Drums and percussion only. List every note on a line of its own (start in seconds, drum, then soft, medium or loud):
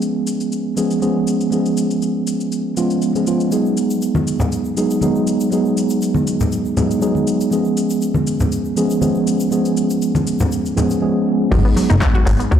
0.02 shaker soft
0.27 shaker medium
0.40 shaker soft
0.52 shaker soft
0.77 shaker medium
0.91 shaker soft
1.02 shaker soft
1.27 shaker medium
1.41 shaker soft
1.52 shaker soft
1.66 shaker soft
1.77 shaker medium
1.91 shaker soft
2.02 shaker soft
2.27 shaker medium
2.41 shaker soft
2.52 shaker soft
2.77 shaker medium
2.90 shaker soft
3.02 shaker soft
3.16 shaker soft
3.27 shaker medium
3.40 shaker soft
3.51 shaker medium
3.51 shaker soft
3.65 shaker soft
3.77 shaker medium
3.90 shaker medium
3.90 shaker soft
4.02 shaker medium
4.02 shaker soft
4.15 high conga medium
4.15 shaker soft
4.27 shaker medium
4.40 low conga medium
4.40 shaker medium
4.40 shaker soft
4.52 shaker medium
4.52 shaker soft
4.65 shaker soft
4.77 shaker medium
4.90 shaker soft
4.90 shaker medium
5.01 high conga medium
5.01 shaker soft
5.01 shaker medium
5.15 shaker soft
5.27 shaker medium
5.40 shaker medium
5.40 shaker soft
5.52 shaker medium
5.52 shaker soft
5.65 shaker soft
5.77 shaker medium
5.89 shaker medium
5.89 shaker soft
6.01 shaker medium
6.01 shaker soft
6.14 high conga medium
6.14 shaker soft
6.27 shaker medium
6.40 low conga medium
6.40 shaker medium
6.40 shaker soft
6.52 shaker medium
6.52 shaker soft
6.65 shaker soft
6.77 low conga medium
6.77 shaker medium
6.91 shaker soft
6.91 shaker medium
7.01 shaker medium
7.01 shaker soft
7.15 high conga soft
7.15 shaker soft
7.27 shaker medium
7.41 shaker medium
7.41 shaker soft
7.52 shaker medium
7.52 shaker soft
7.65 shaker soft
7.77 shaker medium
7.90 shaker medium
7.90 shaker soft
8.01 shaker medium
8.01 shaker soft
8.14 high conga medium
8.14 shaker soft
8.27 shaker medium
8.40 low conga medium
8.40 shaker medium
8.40 shaker soft
8.52 shaker medium
8.52 shaker soft
8.65 shaker soft
8.77 shaker medium
8.90 shaker medium
8.90 shaker soft
9.01 high conga medium
9.01 shaker medium
9.01 shaker soft
9.15 shaker soft
9.27 shaker medium
9.40 shaker medium
9.40 shaker soft
9.52 shaker medium
9.52 shaker soft
9.65 shaker soft
9.77 shaker medium
9.90 shaker medium
9.90 shaker soft
10.02 shaker medium
10.02 shaker soft
10.15 high conga medium
10.15 shaker soft
10.27 shaker medium
10.39 low conga medium
10.39 shaker medium
10.41 shaker soft
10.51 shaker medium
10.51 shaker soft
10.65 shaker soft
10.77 low conga medium
10.77 shaker medium
10.90 shaker medium
10.90 shaker soft
11.52 kick loud
11.52 closed hi-hat medium
11.52 crash loud
11.52 high woodblock medium
11.52 shaker soft
11.65 closed hi-hat soft
11.77 open hi-hat loud
11.77 shaker medium
11.90 closed hi-hat soft
11.90 shaker soft
12.01 kick loud
12.01 clap loud
12.01 closed hi-hat medium
12.01 shaker soft
12.15 closed hi-hat medium
12.26 clap soft
12.26 open hi-hat loud
12.26 shaker medium
12.40 closed hi-hat medium
12.40 shaker soft
12.52 kick loud
12.52 closed hi-hat medium
12.52 shaker soft